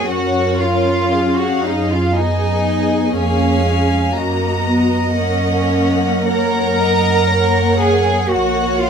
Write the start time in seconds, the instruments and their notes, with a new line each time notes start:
0.08 double bass section F#2, viola section C#4 A#4, cello section F#4, violin section C#5 F#5
0.60 cello section F4, violin section F5
1.12 viola section G#4, violin section F5
1.39 cello section F#4, violin section F#5
1.65 cello section D#4, violin section D#5
1.91 cello section F4, violin section F5
2.15 viola section B3 G#4, cello section D#4, violin section D#5 G#5
3.16 double bass section F2, viola section A#3, cello section C#4, violin section C#5 F5 G#5
3.66 viola section G#3
4.16 double bass section F#2, viola section A#3 F#4, violin section D#5 A#5
4.67 viola section B3
5.16 viola section A#3 A#4, cello section C#4, violin section C#5 F#5
6.28 cello section A#4, violin section C#5 A#5
6.80 violin section D#5
7.30 viola section A#3, violin section C#5 F#5
7.80 cello section G#4, violin section G#5
8.29 double bass section A#1, viola section A#3 A#4, cello section F#4, violin section C#5 F#5
8.80 cello section F4, violin section F5